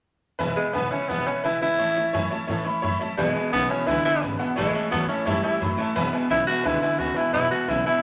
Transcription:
0.39 E1 E2 B2 E3 G#3 B3 E4 B4 E5 G#5
0.56 E2 B2 E3 G#3 B3 E4 B4 E5 B5, muted upright bass stroke
0.73 E1 E2 C#3 E3 G#3 B3 E4 B4 E5 G#5
0.91 E2 C#3 E3 G#3 B3 C#4 E4 B4 E5 G#5, muted upright bass stroke
1.09 E1 E2 B2 E3 G#3 B3 E4 B4 E5 G#5
1.27 E2 B2 E3 G#3 B3 C#4 E4 B4 E5 G#5
1.44 B1 E2 C#3 E3 G#3 B3 E4 B4 E5 G#5
1.61 G#1 E2 C#3 E3 G#3 B3 E4 B4 E5 G#5
1.79 A1 A2 E3 A3 C#4 E4 C#5 E5 A5
1.96 E2 A2 E3 A3 C#4 E4 C#5 E5 A5
2.13 F#2 A2 E3 F#3 A3 C#4 E4 C#5 E5 G#5
2.30 A2 F#3 C#4 E4 C#5 E5 A5
2.35 A3
2.47 A2 E3 A3 C#4 E4 C#5 E5 A5
2.65 A2 E3 C#4 E4 C#5 E5 B5, muted upright bass stroke
2.70 A3
2.82 F#2 A2 E3 F#3 A3 C#4 C#5 E5 B5
2.87 E4
2.99 A2 F#3 C#4 E4 C#5 E5 A5
3.04 A3
3.17 E1 E2 B2 E3 G#3 B3 E4 B4 E5 G#5
3.35 E2 B2 E3 G#3 B3 E4 B4 E5 G#5, muted upright bass stroke
3.51 B1 E2 C#3 E3 G#3 B3 B4 E5 G#5
3.55 B3 E4
3.69 E2 B2 E3 G#3 B3 C#4 E4 B4 E5 G#5
3.86 C#2 E2 B2 D3 E3 G#3 B3 E4 B4 E5 G#5
4.04 E2 D3 E3 G#3 B3 E4 B4 E5 G#5, muted upright bass stroke
4.21 G#1 E2 C#3 E3 G#3 B3 E4 B4 E5 G#5
4.38 E2 B2 E3 G#3 B3 E4 B4 E5 F#5, muted upright bass stroke
4.56 A1 A2 E3 G#3 A3 C#4 E4 C#5 E5 A5
4.73 A2 E3 A3 C#4 E4 C#5 E5 A5, muted upright bass stroke
4.91 E2 A2 E3 F#3 A3 B3 C#4 E4 C#5 E5 A5
5.08 A2 E3 A3 C#4 E4 C#5 E5 A5, muted upright bass stroke
5.25 F#2 A2 E3 G3 A3 C#4 E4 C#5 E5 A5
5.42 A2 G3 A3 C#4 E4 C#5 E5 G#5, muted upright bass stroke
5.60 F#2 A2 E3 F#3 A3 C#4 E4 C#5 E5 B5
5.77 A2 E3 A3 C#4 E4 C#5 E5 A5
5.95 E1 E2 B2 E3 G#3 B3 E4 B4 E5 G#5
6.12 E2 B2 E3 G#3 B3 E4 B4 E5 G#5
6.30 B1 E2 C#3 E3 G#3 B3 E4 B4 E5 G#5
6.46 E2 B2 E3 G#3 B3 E4 F#4 B4 E5 G#5, muted upright bass stroke
6.64 C#2 E2 B2 D3 E3 G#3 B3 E4 B4 E5 G#5
6.81 E2 D3 E3 G#3 B3 E4 B4 E5 G#5, muted upright bass stroke
6.98 D2 E2 C#3 E3 G#3 B3 E4 F#4 B4 E5 G#5
7.15 E2 B2 E3 G#3 B3 E4 B4 E5 G#5, muted upright bass stroke
7.33 E1 E2 B2 E3 G#3 B3 E4 B4 E5 G#5
7.50 E2 B2 E3 G#3 B3 E4 F#4 B4 E5 G#5, muted upright bass stroke
7.68 B1 E2 C#3 E3 G#3 B3 E4 B4 E5 G#5
7.85 E2 B2 E3 G#3 B3 E4 B4 E5 G#5, muted upright bass stroke

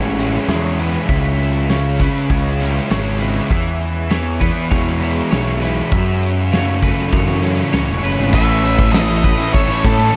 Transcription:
Already playing: A1 A2 E3 G#3 C#4 C#5 E5
0.19 C#4 E4, open hi-hat
0.48 E2 G#3 C#5, snare, open hi-hat
0.64 snare
0.79 E3 E4 B4, open hi-hat
1.08 C#2 C#3 E5, kick, open hi-hat
1.39 open hi-hat
1.69 C#3 C#4 C#5, snare, open hi-hat
2.00 C#3 C#4 B4, kick, open hi-hat
2.30 C#2 G#3 C#5, kick, open hi-hat
2.60 C#4 E4, open hi-hat
2.90 G#1 G#3 C#5, snare, open hi-hat
3.20 C#3 E4 B4, open hi-hat
3.50 E2 E3 E5, kick, open hi-hat
3.81 open hi-hat
4.10 E3 B3 C#5, snare, open hi-hat
4.40 E3 B3 B4, kick, open hi-hat
4.70 E2 G#3 C#5, kick, open hi-hat
4.87 snare
5.01 B3 E4, open hi-hat
5.31 B1 G#3 C#5, snare, open hi-hat
5.48 snare
5.61 E3 E4 B4, open hi-hat
5.91 F#2 E5, kick, open hi-hat
6.23 open hi-hat
6.52 C#3 A3 C#5, snare, open hi-hat
6.82 C#3 A3 B4, kick, open hi-hat
7.12 F#2 E3 C#5, kick, open hi-hat
7.28 snare
7.42 A3 C#4, open hi-hat
7.73 C#2 E3 C#5, snare, open hi-hat
7.88 E1, snare
8.03 F#1 C#3 C#4 B4, open hi-hat
8.19 G#1
8.32 A1 A2 E3 A3 C#4 E4 B4 E5, kick, crash, tambourine
8.62 A2 E3 A3 C#4 E4, tambourine
8.77 E3 A3, kick
8.91 A2 E3 A3 C#4 E4 A4 D#5, snare, open hi-hat, tambourine
9.07 E3 A3 C#4 E4
9.23 A2 E3 A3 B4, muted overdriven electric guitar stroke, kick, tambourine
9.38 A3 C#4 E4, snare
9.53 A4 C#5, kick, open hi-hat, tambourine
9.68 E3 A3 C#4 E4
9.83 A2 E3 A3 C#4 E4 A4, kick
9.98 A3 C#4 E4
10.02 E3

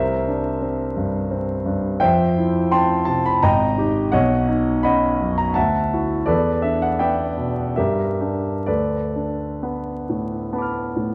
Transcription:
Already playing: C2 A#4 C5 E5
0.28 D4
0.62 C4
0.97 G2
1.30 C4
1.66 G2
2.00 F2 C5 E5 G5
2.38 E4
2.72 C4 G5 A5 C6
3.05 C3 A5
3.26 B5
3.43 G#1 D#5 G5 A#5
3.78 D#4 G4
4.12 B1 C#5 D#5 F#5
4.49 D#4
4.83 C#4 D#5 F#5 B5
5.21 F#2
5.38 A#5
5.54 D2 E5 F#5 A5
5.93 E4 F#4
6.26 E2 A4 B4 D5
6.62 D4 E5
6.82 F#5
6.99 B3 D5 E5 G5
7.37 B2
7.76 G2 G4 A#4 E5
8.20 D4 G4
8.66 D2 A4 B4 D5
9.16 D4
9.63 B3
10.09 A2
10.53 B3 A5 B5
10.59 D6 F6
10.96 A2

